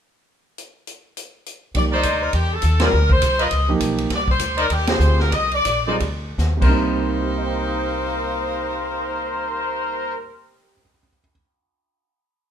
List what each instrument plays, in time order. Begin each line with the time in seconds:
0.58 closed hi-hat
0.87 closed hi-hat
1.17 closed hi-hat
1.46 closed hi-hat
1.74 upright bass C2, grand piano F3 A#3 D#4 G4, saxophone section D5, kick, ride
1.91 trumpet section D#4 A#4 C5 D5, saxophone section C5
2.03 upright bass D2, kick, hi-hat pedal, ride
2.22 saxophone section A#4
2.33 upright bass E2, saxophone section G4, kick, ride
2.53 saxophone section A4
2.62 upright bass D#2, kick, hi-hat pedal, ride
2.80 grand piano G3 C4 F4 A#4, trumpet section F4 G#4 C5 D5, saxophone section A#4, snare, ride
2.93 upright bass D2
3.10 saxophone section C5, kick
3.21 upright bass C2, kick, hi-hat pedal, ride
3.39 trumpet section F4 A#4 B4 D#5, ride
3.43 saxophone section D#5
3.51 upright bass C#2, kick, ride
3.69 grand piano F3 A#3 D#4 G4
3.80 upright bass B1, kick, hi-hat pedal, ride
3.98 ride
4.10 upright bass C2, kick, snare, ride
4.16 saxophone section D5
4.28 saxophone section C5, kick
4.39 upright bass D2, kick, hi-hat pedal, ride
4.57 trumpet section D#4 A#4 C5 D5, ride
4.61 saxophone section A#4
4.70 upright bass D#2, saxophone section G4, kick, ride
4.87 grand piano C4 F4 G4 G#4, saxophone section C5, snare, ride
4.99 upright bass D2, hi-hat pedal
5.20 saxophone section A#4, snare
5.32 upright bass C2, saxophone section D#5, kick, ride
5.51 saxophone section D5, ride
5.65 upright bass A#1, kick, hi-hat pedal, ride
5.86 grand piano G3 C4 F4 G#4, trumpet section D#4 A#4 C5 D5
6.00 upright bass D2, kick, ride
6.38 upright bass D#2, snare, hi-hat pedal
6.57 grand piano C3 G3
6.61 upright bass C2, saxophone section A#3 D#4 G4 C5, grand piano A#3, trumpet section A#4 C5, kick, crash
6.66 grand piano C4 D#4
7.21 grand piano G4
7.29 grand piano C5
7.46 grand piano G5
7.56 grand piano C6
7.67 grand piano D#6
7.79 grand piano G6